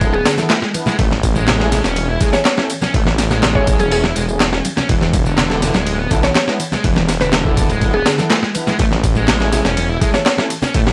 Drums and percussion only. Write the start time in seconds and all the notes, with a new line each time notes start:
0.01 kick, ride, tambourine
0.14 muted conga
0.26 snare, ride, tambourine
0.38 snare, tambourine, muted conga
0.50 snare, clap, ride, tambourine
0.62 snare
0.74 ride, tambourine, muted conga
0.86 snare, tambourine, high conga, low conga
0.99 kick, ride, tambourine, muted conga
1.11 snare, high conga
1.23 kick, ride, tambourine
1.35 tambourine, muted conga
1.48 snare, clap, ride, tambourine, low conga
1.60 snare, muted conga
1.72 snare, ride, tambourine, low conga
1.84 snare, tambourine, high conga
1.96 ride, tambourine, muted conga
2.21 kick, ride, tambourine, muted conga
2.33 snare, tambourine
2.45 snare, clap, ride, tambourine
2.57 snare, muted conga
2.70 ride, tambourine
2.81 snare, tambourine, muted conga, high conga, low conga
2.94 kick, ride, tambourine
3.06 snare, high conga
3.18 snare, ride, tambourine, muted conga
3.31 snare, tambourine
3.42 snare, clap, ride, tambourine, muted conga, low conga
3.55 kick
3.67 kick, ride, tambourine, low conga
3.79 ride, tambourine, muted conga, high conga
3.92 open hi-hat, tambourine
4.04 snare, muted conga
4.16 ride, tambourine
4.29 tambourine
4.40 snare, clap, ride, tambourine, muted conga
4.53 snare
4.65 ride, tambourine, muted conga
4.77 snare, tambourine, high conga, low conga
4.89 kick, ride, tambourine, muted conga
5.01 snare, high conga
5.13 kick, ride, tambourine, muted conga
5.26 tambourine
5.38 snare, clap, ride, tambourine, low conga
5.50 snare, muted conga
5.62 snare, ride, tambourine, low conga
5.74 snare, tambourine, muted conga, high conga
5.87 ride, tambourine
6.10 kick, ride, tambourine, muted conga
6.23 snare, tambourine
6.35 snare, clap, ride, tambourine, muted conga
6.48 snare
6.60 ride, tambourine
6.72 snare, tambourine, muted conga, high conga, low conga
6.84 kick, ride, tambourine
6.96 snare, muted conga, high conga
7.09 snare, ride, tambourine
7.21 snare, tambourine
7.33 snare, clap, ride, tambourine, muted conga, low conga
7.45 kick
7.57 kick, ride, tambourine, muted conga, low conga
7.69 ride, tambourine, high conga
7.81 kick, ride, tambourine
7.93 muted conga
8.06 snare, ride, tambourine
8.18 snare, tambourine, muted conga
8.30 snare, clap, ride, tambourine
8.43 snare
8.55 ride, tambourine, muted conga
8.67 snare, tambourine, high conga, low conga
8.79 kick, ride, tambourine, muted conga
8.91 snare, high conga
9.04 kick, ride, tambourine
9.15 tambourine, muted conga
9.28 snare, clap, ride, tambourine, low conga
9.40 snare, muted conga
9.53 snare, ride, tambourine, low conga
9.65 snare, tambourine, high conga
9.77 ride, tambourine, muted conga
10.01 kick, ride, tambourine, muted conga
10.14 snare, tambourine
10.26 snare, clap, ride, tambourine
10.38 snare, muted conga
10.50 ride, tambourine
10.62 snare, tambourine, muted conga, high conga, low conga
10.74 kick, ride, tambourine
10.87 snare, high conga